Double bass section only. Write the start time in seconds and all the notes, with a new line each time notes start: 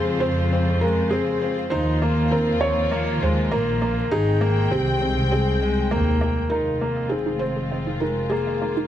Already playing: F2
1.72 D#2
3.22 D#2
3.53 A#1
4.12 G#1
4.72 C2
5.92 D#2
6.52 F1